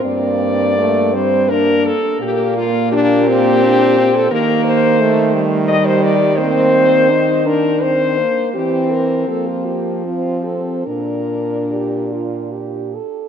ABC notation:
X:1
M:3/4
L:1/16
Q:1/4=83
K:Gdor
V:1 name="French horn"
d6 c2 B2 A2 | G2 F2 G6- G A | [K:Bb] B2 c4 z2 e c d2 | c6 B2 c4 |
G2 B2 A F G2 F2 A2 | B8 z4 |]
V:2 name="French horn"
B,4 A,2 G,2 B,2 z2 | B,8 D2 C2 | [K:Bb] B,4 A,4 G,4 | B,4 C2 D4 z2 |
C4 B,4 C4 | D4 G2 F2 G2 A2 |]
V:3 name="French horn"
C4 B,2 C2 D2 z2 | B,4 D2 C6 | [K:Bb] B,4 A,2 G,6 | C4 E2 D2 C2 B,2 |
C6 z2 C4 | D8- D2 z2 |]
V:4 name="French horn" clef=bass
G,,8- G,,2 z2 | B,,12 | [K:Bb] E,12- | E,8- E,2 z2 |
=E,4 F,8 | B,,8- B,,2 z2 |]